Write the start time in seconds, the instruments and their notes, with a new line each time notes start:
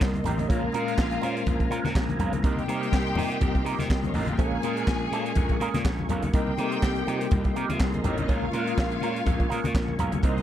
Already playing: tine electric piano G3 A#3 C4 D#4 A#4, string section D#4 D#5, tonewheel organ A#4 D#5 C6
0.01 slap bass C2, muted clean electric guitar stroke, kick, snare, clap, muted conga
0.14 muted clean electric guitar stroke, closed hi-hat, high conga
0.24 slap bass A1, clean electric guitar A#3 D#4 G4 A#4, closed hi-hat, low conga
0.38 clean electric guitar A#3 D#4 G4 A#4, closed hi-hat, high conga
0.48 slap bass A#1, clean electric guitar G#3 C#4 F4 A#4, tine electric piano G#3 A#3 C#4 F4 A#4, string section F4 F5, tonewheel organ A#4 G#5 A#5, kick, closed hi-hat
0.62 high conga
0.72 slap bass A#2, clean electric guitar G#3 C#4 F4 A#4, tine electric piano G#3 A#3 C#4 F4 A#4, closed hi-hat, muted conga
0.85 clean electric guitar G#3 C#4 F4 A#4, closed hi-hat
0.98 slap bass A#1, kick, snare, clap
1.10 muted clean electric guitar stroke, closed hi-hat
1.21 slap bass A#2, clean electric guitar G#3 C#4 F4 A#4, tine electric piano G#3 A#3 C#4 F4 C5, closed hi-hat, muted conga
1.36 muted clean electric guitar stroke, closed hi-hat
1.46 slap bass A#1, kick, closed hi-hat, low conga
1.59 muted clean electric guitar stroke, kick, closed hi-hat
1.70 slap bass A#2, clean electric guitar G#3 C#4 F4 A#4, closed hi-hat, muted conga
1.84 slap bass A#2, muted clean electric guitar stroke, snare, closed hi-hat, high conga
1.95 slap bass A#1, muted clean electric guitar stroke, kick, snare, clap, muted conga
2.09 muted clean electric guitar stroke, closed hi-hat, high conga
2.19 slap bass B1, clean electric guitar G#3 C#4 F4 A#4, closed hi-hat, muted conga, low conga
2.33 muted clean electric guitar stroke, closed hi-hat, high conga
2.43 slap bass C2, tine electric piano G3 A#3 C4 D#4 A#4, clean electric guitar A#3 D#4 G4 A#4, string section G4 G5, tonewheel organ A#4 D#5 C6, kick, closed hi-hat, muted conga
2.56 closed hi-hat, high conga
2.66 slap bass C3, tine electric piano G3 A#3 C4 D#4 G4, clean electric guitar A#3 D#4 G4 A#4, closed hi-hat, muted conga
2.81 clean electric guitar A#3 D#4 G4 A#4, closed hi-hat
2.91 slap bass C2, kick, snare, clap, muted conga
3.06 muted clean electric guitar stroke, closed hi-hat
3.15 slap bass C3, tine electric piano G3 A#3 C4 D#4 F4, clean electric guitar A#3 D#4 G4 A#4, open hi-hat, muted conga, low conga
3.30 muted clean electric guitar stroke, closed hi-hat
3.41 slap bass C2, kick, closed hi-hat, muted conga, low conga
3.54 muted clean electric guitar stroke, kick, closed hi-hat
3.64 slap bass C3, clean electric guitar A#3 D#4 G4 A#4, closed hi-hat, muted conga
3.79 slap bass C3, muted clean electric guitar stroke, snare, closed hi-hat, high conga
3.90 slap bass C2, muted clean electric guitar stroke, kick, snare, clap, muted conga
4.03 string section C#4 C#5, muted clean electric guitar stroke, closed hi-hat, high conga
4.14 slap bass A1, clean electric guitar A#3 D#4 G4 A#4, string section D#4 D#5, open hi-hat, muted conga, low conga
4.24 string section F4 F5, high conga
4.28 string section G4 G5, closed hi-hat
4.38 slap bass A#1, clean electric guitar G#3 C#4 F4 A#4, tine electric piano G#3 A#3 C#4 F4 A#4, string section G#4 G#5, tonewheel organ G#5 C#6, kick, closed hi-hat, muted conga
4.51 high conga
4.62 slap bass A#2, tine electric piano G#3 A#3 C#4 F4 A#4, clean electric guitar G#3 C#4 F4 A#4, closed hi-hat, muted conga
4.76 clean electric guitar G#3 C#4 F4 A#4, closed hi-hat
4.87 slap bass A#1, kick, snare, clap, muted conga
5.02 muted clean electric guitar stroke
5.11 slap bass A#2, tine electric piano G#3 A#3 C#4 F4 A4, clean electric guitar G#3 C#4 F4 A#4, closed hi-hat
5.18 tine electric piano A#4
5.26 muted clean electric guitar stroke, closed hi-hat
5.35 slap bass A#1, kick, closed hi-hat, muted conga, low conga
5.49 muted clean electric guitar stroke, kick, closed hi-hat
5.60 slap bass A#2, clean electric guitar G#3 C#4 F4 A#4, closed hi-hat, muted conga
5.74 slap bass A#2, muted clean electric guitar stroke, snare, closed hi-hat, high conga
5.85 slap bass A#1, muted clean electric guitar stroke, kick, snare, clap
5.99 muted clean electric guitar stroke, high conga
6.09 slap bass B1, clean electric guitar G#3 C#4 F4 A#4, closed hi-hat, low conga
6.22 muted clean electric guitar stroke, closed hi-hat, high conga
6.33 slap bass C2, tine electric piano G3 A#3 C4 D#4 A#4, clean electric guitar A#3 D#4 G4 A#4, string section G4 G5, tonewheel organ D#5 C6, kick, closed hi-hat, muted conga
6.47 high conga
6.57 slap bass C3, tine electric piano G3 A#3 C4 D#4 A4, clean electric guitar A#3 D#4 G4 A#4, closed hi-hat, muted conga
6.65 tine electric piano A#4
6.72 clean electric guitar A#3 D#4 G4 A#4, closed hi-hat
6.83 slap bass C2, kick, snare, clap, muted conga
6.96 muted clean electric guitar stroke, closed hi-hat
7.06 slap bass C3, tine electric piano G3 A#3 C4 D#4 F4, clean electric guitar A#3 D#4 G4 A#4, closed hi-hat, muted conga
7.20 muted clean electric guitar stroke, closed hi-hat
7.31 slap bass C2, kick, closed hi-hat, muted conga, low conga
7.44 muted clean electric guitar stroke, kick, closed hi-hat
7.55 slap bass C3, clean electric guitar A#3 D#4 G4 A#4, closed hi-hat, muted conga
7.69 slap bass C3, muted clean electric guitar stroke, closed hi-hat, high conga
7.73 string section F3 F4
7.79 slap bass C2, string section G3 G4, muted clean electric guitar stroke, kick, snare, clap
7.88 string section G#3 G#4
7.93 string section A#3, muted clean electric guitar stroke, closed hi-hat, high conga
7.97 string section A#4
8.03 slap bass A1, clean electric guitar A#3 D#4 G4 A#4, string section C4 C5, closed hi-hat, muted conga, low conga
8.12 string section C#4 C#5
8.18 string section D#4 D#5, muted clean electric guitar stroke, closed hi-hat, high conga
8.28 slap bass A#1, clean electric guitar G#3 C#4 F4 A#4, tine electric piano G#3 A#3 C#4 F4 A#4, string section F4 F5, tonewheel organ G#5 C#6, kick, closed hi-hat, muted conga
8.42 high conga
8.52 slap bass A#2, clean electric guitar G#3 C#4 F4 A#4, tine electric piano G#3 A#3 C#4 F4 A#4, closed hi-hat, muted conga
8.67 clean electric guitar G#3 C#4 F4 A#4, closed hi-hat
8.78 slap bass A#1, kick, snare, clap
8.91 muted clean electric guitar stroke, closed hi-hat
9.01 slap bass A#2, tine electric piano G#3 A#3 C#4 F4 A#4, clean electric guitar G#3 C#4 F4 A#4, closed hi-hat, muted conga
9.15 muted clean electric guitar stroke, closed hi-hat
9.26 slap bass A#1, kick, closed hi-hat, muted conga, low conga
9.39 muted clean electric guitar stroke, kick, closed hi-hat
9.49 slap bass A#2, clean electric guitar G#3 C#4 F4 A#4, closed hi-hat, muted conga
9.63 slap bass A#2, muted clean electric guitar stroke, closed hi-hat, high conga
9.74 slap bass A#1, muted clean electric guitar stroke, kick, snare, clap, muted conga
9.88 muted clean electric guitar stroke, high conga
9.99 slap bass B1, clean electric guitar G#3 C#4 F4 A#4, closed hi-hat, muted conga, low conga
10.12 muted clean electric guitar stroke, closed hi-hat, high conga
10.23 slap bass C2, tine electric piano G3 A#3 C4 D#4 A#4, clean electric guitar G3 C4 D#4 A#4, string section D#4 D#5, tonewheel organ A#4 D#5 C6, kick, closed hi-hat, muted conga
10.37 closed hi-hat, high conga